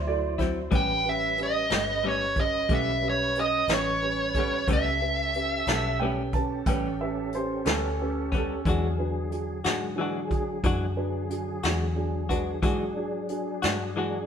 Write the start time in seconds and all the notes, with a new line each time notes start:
Already playing: D2 F#3 E4 C5
0.07 E4 F#4 A4 D5
0.38 F#3 C4 E4 F#4 C5, kick, snare, closed hi-hat
0.71 A1 A2 G3 B3 C#4 G4 B4, kick, closed hi-hat
0.75 G5
1.05 C#4 G4 B4 E5
1.38 C#4 G4 B4, closed hi-hat
1.43 D#5
1.70 G1 G3 B3 C#4 G4 A4, snare, closed hi-hat
2.03 A2 G3 B3 C#4 G4 B4
2.08 C#5
2.36 C#4 G4 B4, kick, closed hi-hat
2.41 D#5
2.69 B1 A2 G3 B3 C#4 G4 A4, kick, closed hi-hat
2.73 C#4 E5
3.02 C#4 G4 B4
3.10 C#5
3.35 C#4 G4 B4, closed hi-hat
3.40 D#5
3.68 A1 B3 C#4 G4 B4, snare, closed hi-hat
3.72 G3 C#5
4.02 C#4 G4 B4
4.35 C#4 G4 A4, kick, closed hi-hat
4.39 G3 B3
4.67 C#2 A2 G3 B3 C#4 G4 A4 B4, kick, closed hi-hat
4.73 E5
5.01 C#4 G4 B4
5.34 C#4 G4 B4, closed hi-hat
5.67 B1 B3 C#4 G4 A4 A5, snare, closed hi-hat
5.71 G3
6.00 A2 G3 B3 C#4 G4 B4 G5
6.05 C#4
6.33 C#4 G4 B4 A5, kick, closed hi-hat
6.66 A1 A2 G3 B3 C#4 G4 B4 G5, kick, closed hi-hat
7.01 C#4 G4 B4 E5
7.33 C#4 G4 B4 C5, closed hi-hat
7.65 D2 B3 C#4 G4 A4 B4, snare, closed hi-hat
7.70 G3
8.01 C#4 G4 B4
8.32 G3 B3 C#4 G4, kick, closed hi-hat
8.36 A4
8.65 E2 D3 E3 F#3 G#3 D4 F#4 G#4, kick, closed hi-hat
8.99 D4 F#4 B4
9.31 D4 F#4 G#4, closed hi-hat
9.64 G#2 G#3 D4 F#4 G#4, snare, closed hi-hat
9.96 E3 G#3 D4 F#4 G#4
10.01 D4 F#4
10.28 D4 F#4 G#4, kick, closed hi-hat
10.63 F#2 E3 G#3 D4 F#4 G#4, kick, closed hi-hat
10.97 D4 F#4 B4
11.29 D4 F#4 G#4, closed hi-hat
11.63 E2 G#3 D4 F#4 G#4, snare, closed hi-hat
11.96 D4 F#4 G#4
12.29 G#3 D4 F#4 B4, kick, closed hi-hat
12.62 G#2 E3 F#3 G#3 D4 F#4 G#4, kick, closed hi-hat
12.97 D4 F#4 G#4
13.29 D4 F#4 G#4, closed hi-hat
13.62 G2 G#3 D4 F#4 G#4, snare, closed hi-hat
13.96 E3 G#3 D4 F#4 G#4